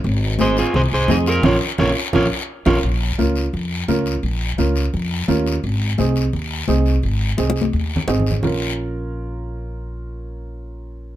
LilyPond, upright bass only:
\new Staff \with { instrumentName = "Upright bass" } { \clef bass \time 4/4 \key bes \minor \tempo 4 = 172 aes,,2 c,8 c,8 f,4 | bes,,8 r8 bes,,8 r8 bes,,8 r4 bes,,8 | bes,,4 des,4 f,4 des,4 | bes,,4 des,4 f,4 ees,4 |
aes,,4 c,4 ees,4 c,4 | aes,,4 c,4 ees,4 aes,,4 | bes,,1~ | bes,,1 | }